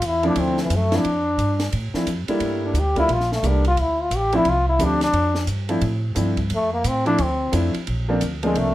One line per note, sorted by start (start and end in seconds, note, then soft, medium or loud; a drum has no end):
0.02 0.35 E2 medium
0.02 hi-hat pedal soft
0.02 ride medium
0.07 0.26 E4 medium
0.23 0.68 F3 medium
0.23 0.68 A3 medium
0.23 0.68 C4 medium
0.23 0.68 D4 medium
0.23 0.42 D4 medium
0.23 0.68 E4 medium
0.23 ride soft
0.36 0.69 D2 medium
0.36 ride medium
0.40 0.60 C4 medium
0.57 snare soft
0.63 0.78 E3 medium
0.70 1.03 F#2 medium
0.70 hi-hat pedal medium
0.70 ride medium
0.76 0.98 A3 medium
0.91 1.03 F3 medium
0.91 1.03 A3 medium
0.91 1.03 C4 medium
0.91 1.03 D4 medium
0.91 1.04 E4 medium
0.91 snare medium
0.91 ride soft
0.97 1.75 D4 medium
1.04 1.37 F2 medium
1.04 ride medium
1.38 1.71 G2 medium
1.38 hi-hat pedal soft
1.38 ride medium
1.60 snare medium
1.60 ride soft
1.72 1.93 A2 medium
1.72 ride medium
1.94 2.06 F3 medium
1.94 2.06 A3 medium
1.94 2.06 C4 medium
1.94 2.06 D4 medium
1.94 2.06 E4 medium
1.94 muted upright bass stroke soft
1.94 snare soft
2.06 2.27 F2 medium
2.06 hi-hat pedal medium
2.06 ride medium
2.28 2.73 G3 medium
2.28 2.73 A3 medium
2.28 2.73 A#3 medium
2.28 2.73 D4 medium
2.28 2.73 E4 medium
2.28 muted upright bass stroke soft
2.28 ride soft
2.40 2.73 G2 medium
2.40 ride medium
2.65 2.81 D4 medium
2.73 3.07 D2 medium
2.73 hi-hat pedal soft
2.73 ride medium
2.79 2.99 G4 medium
2.96 3.08 G3 medium
2.96 3.08 A3 medium
2.96 3.08 A#3 medium
2.96 3.08 D4 medium
2.96 3.14 E4 loud
2.96 3.08 F4 medium
2.96 kick soft
2.96 ride soft
3.08 3.42 A#1 medium
3.08 ride medium
3.13 3.33 F4 medium
3.20 snare soft
3.32 3.49 A3 medium
3.32 snare soft
3.43 3.76 C2 medium
3.43 3.63 G3 medium
3.43 3.63 A3 medium
3.43 3.63 A#3 medium
3.43 3.63 D4 medium
3.43 3.63 G4 medium
3.43 hi-hat pedal medium
3.43 ride medium
3.48 3.67 D4 medium
3.65 3.82 F4 loud
3.65 ride soft
3.77 4.10 D2 medium
3.77 ride medium
3.81 4.03 E4 medium
4.02 4.18 F4 medium
4.10 4.44 A1 medium
4.10 hi-hat pedal medium
4.10 ride medium
4.17 4.37 G4 loud
4.33 4.44 F3 medium
4.33 4.44 A3 medium
4.33 4.45 C4 medium
4.33 4.45 D4 medium
4.33 4.45 E4 medium
4.33 4.51 E4 medium
4.33 ride soft
4.45 4.79 C2 medium
4.45 ride medium
4.49 4.68 F4 loud
4.69 4.85 E4 medium
4.79 5.12 D2 loud
4.79 4.99 F3 medium
4.79 4.99 A3 medium
4.79 4.99 C4 medium
4.79 4.99 D4 medium
4.79 4.99 G4 medium
4.79 hi-hat pedal medium
4.79 ride medium
4.84 5.03 D4 medium
5.01 5.46 D4 loud
5.01 snare soft
5.01 ride soft
5.13 5.46 F2 medium
5.13 ride medium
5.35 snare medium
5.47 5.81 G2 medium
5.47 hi-hat pedal soft
5.47 ride medium
5.69 5.81 F3 medium
5.69 5.81 A3 medium
5.69 5.81 C4 medium
5.69 5.81 D4 medium
5.69 5.81 E4 medium
5.69 ride soft
5.81 6.15 A2 medium
5.81 ride medium
6.15 6.49 G2 medium
6.15 6.35 F3 medium
6.15 6.35 A3 medium
6.15 6.35 C4 medium
6.15 6.36 D4 medium
6.15 6.36 E4 medium
6.15 hi-hat pedal medium
6.15 ride medium
6.37 kick medium
6.37 ride soft
6.50 6.84 F2 medium
6.50 ride medium
6.55 6.73 A3 medium
6.74 6.90 A#3 medium
6.84 7.17 A2 medium
6.84 7.06 C4 medium
6.84 hi-hat pedal medium
6.84 ride medium
7.05 7.17 F3 medium
7.05 7.17 A3 medium
7.05 7.17 C4 medium
7.05 7.17 D4 medium
7.05 7.24 D4 loud
7.05 7.18 E4 medium
7.05 ride soft
7.18 7.52 D2 medium
7.18 ride medium
7.23 7.55 C4 medium
7.52 7.73 F2 medium
7.52 7.72 F3 medium
7.52 7.72 A3 medium
7.52 7.72 C4 medium
7.52 7.72 D4 medium
7.52 7.72 E4 medium
7.52 hi-hat pedal medium
7.52 ride medium
7.74 muted upright bass stroke soft
7.74 ride soft
7.87 8.20 A#1 medium
7.87 ride medium
8.09 8.20 F3 medium
8.09 8.20 A3 medium
8.09 8.20 A#3 medium
8.09 8.20 C4 medium
8.09 8.20 D4 medium
8.21 8.54 D2 medium
8.21 hi-hat pedal medium
8.21 ride medium
8.43 8.74 F3 medium
8.43 8.61 G#3 medium
8.43 8.74 A3 medium
8.43 8.74 A#3 medium
8.43 8.74 C4 medium
8.43 8.74 D4 medium
8.43 ride soft
8.55 8.74 C2 medium
8.55 8.74 A3 medium
8.55 ride medium